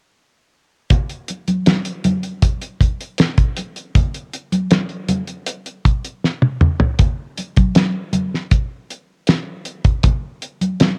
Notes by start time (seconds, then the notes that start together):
0.90 kick, closed hi-hat, low conga
1.10 closed hi-hat
1.28 closed hi-hat, muted conga
1.48 closed hi-hat, high conga
1.66 snare, closed hi-hat, muted conga, high conga
1.85 closed hi-hat
2.04 closed hi-hat, muted conga, high conga, low conga
2.23 closed hi-hat
2.42 kick, closed hi-hat, muted conga
2.61 closed hi-hat
2.81 kick, closed hi-hat, muted conga
3.01 closed hi-hat
3.18 snare, closed hi-hat, muted conga
3.38 kick, closed hi-hat
3.57 closed hi-hat, muted conga
3.76 closed hi-hat
3.95 kick, closed hi-hat, muted conga, low conga
4.14 closed hi-hat
4.34 closed hi-hat
4.52 closed hi-hat, high conga
4.71 snare, closed hi-hat, high conga
4.89 closed hi-hat
5.09 closed hi-hat, high conga, low conga
5.27 closed hi-hat
5.46 closed hi-hat
5.66 closed hi-hat
5.85 kick, closed hi-hat, muted conga
6.05 closed hi-hat
6.24 snare
6.42 high tom
6.61 mid tom, muted conga
6.80 floor tom
6.99 kick, closed hi-hat, low conga
7.37 closed hi-hat, muted conga
7.56 kick, closed hi-hat, high conga
7.75 snare, closed hi-hat, muted conga, high conga
8.13 closed hi-hat, high conga, low conga
8.34 snare
8.51 kick, closed hi-hat, muted conga
8.90 closed hi-hat
9.27 snare, closed hi-hat, muted conga
9.65 closed hi-hat
9.85 kick, closed hi-hat
10.03 kick, closed hi-hat, muted conga, low conga
10.42 closed hi-hat
10.61 closed hi-hat, high conga
10.80 snare, closed hi-hat, high conga